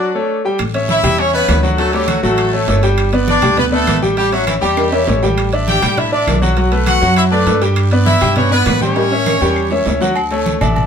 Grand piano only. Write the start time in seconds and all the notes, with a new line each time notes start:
0.15 A3 A4 C#5
0.45 G3 G4 G5
0.74 C#4 C#5 E5
1.03 G3 G4 G5
1.19 C#4 C#5 E5
1.34 C#4 C#5 E5
1.63 F#3 F#4 F#5
1.79 F#3 F#4 F#5
1.94 A3 A4 C#5
2.23 F#3 F#4 F#5
2.53 A3 A4 C#5
2.68 A3 A4 C#5
2.83 G3 G4 G5
3.13 B3 B4 D5
3.42 G3 G4 G5
3.57 B3 B4 D5
3.72 B3 B4 D5
4.02 G3 G4 G5
4.17 G3 G4 G5
4.32 C#4 C#5 E5
4.62 G3 G4 G5
4.92 C#4 C#5 E5
5.07 C#4 C#5 E5
5.23 G3 G4 G5
5.53 D4 D5 E5
5.82 G3 G4 G5
5.97 D4 D5 E5
6.12 D4 D5 E5
6.42 F#3 F#4 F#5
6.57 F#3 F#4 F#5
6.72 A3 A4 B4
7.02 F#3 F#4 F#5
7.32 A3 A4 B4
7.46 A3 A4 B4
7.62 G3 G4 G5
7.92 B3 B4 D5
8.21 G3 G4 G5
8.36 B3 B4 D5
8.51 B3 B4 D5
8.81 G3 G4 G5
8.96 G3 G4 G5
9.12 C#4 C#5 E5
9.41 G3 G4 G5
9.71 C#4 C#5 E5
9.87 C#4 C#5 E5
10.01 F#3 F#4 F#5
10.31 A3 A4 C#5
10.61 D4 D5 E5